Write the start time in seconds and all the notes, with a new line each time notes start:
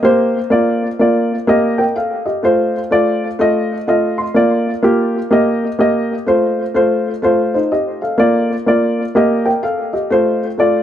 0.03 A#3 G4 C5
0.50 A#3 F4 D5
0.99 A#3 F4 D5
1.47 A#3 G4 D#5
1.78 A#4 G5
1.96 A4 F5
2.26 G4 D#5
2.43 A3 F4 C5
2.91 A3 F4 D5
3.39 A3 F4 D#5
3.87 A3 F4 D#5 F5
4.18 C6
4.34 A#3 F4 D5
4.83 A#3 F4 G4
5.31 A#3 G4 D#5
5.79 A#3 G4 D#5
6.26 A3 F4 C5
6.74 A3 F4 C5
7.22 A3 F4 C5
7.54 D#4 C5
7.72 G4 D#5
8.02 A4 F5
8.18 A#3 F4 D5
8.66 A#3 F4 D5
9.15 A#3 G4 D#5
9.45 A#4 G5
9.63 A4 F5
9.93 G4 D#5
10.10 A3 F4 C5
10.58 A3 F4 D5